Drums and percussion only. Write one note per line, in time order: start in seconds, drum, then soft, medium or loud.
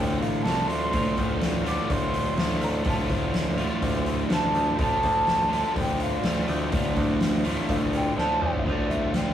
0.22 open hi-hat medium
0.45 snare loud
0.45 open hi-hat medium
0.69 open hi-hat medium
0.93 kick loud
0.93 open hi-hat medium
1.17 kick medium
1.17 snare soft
1.17 open hi-hat medium
1.41 snare loud
1.41 open hi-hat medium
1.66 snare soft
1.66 open hi-hat medium
1.90 kick medium
1.90 open hi-hat medium
2.14 open hi-hat medium
2.38 snare loud
2.38 open hi-hat medium
2.61 open hi-hat medium
2.85 kick loud
2.85 open hi-hat medium
3.09 kick medium
3.09 snare soft
3.09 open hi-hat medium
3.34 snare loud
3.34 open hi-hat medium
3.58 open hi-hat medium
3.82 kick medium
3.82 open hi-hat medium
4.06 open hi-hat medium
4.30 snare loud
4.30 open hi-hat medium
4.55 open hi-hat medium
4.79 kick loud
4.79 open hi-hat medium
5.03 kick medium
5.03 snare soft
5.03 open hi-hat medium
5.27 snare loud
5.27 open hi-hat medium
5.53 snare soft
5.53 open hi-hat medium
5.76 kick medium
5.76 open hi-hat medium
6.00 open hi-hat medium
6.23 snare loud
6.23 open hi-hat medium
6.48 open hi-hat medium
6.72 kick loud
6.72 open hi-hat medium
6.96 kick medium
6.96 open hi-hat medium
7.21 snare loud
7.21 open hi-hat medium
7.45 open hi-hat medium
7.69 kick medium
7.69 open hi-hat medium
7.93 open hi-hat medium
8.18 snare medium
8.42 mid tom medium
8.54 floor tom medium
8.66 kick loud
8.66 crash medium
8.91 kick medium
8.91 closed hi-hat medium
9.14 snare loud
9.14 closed hi-hat medium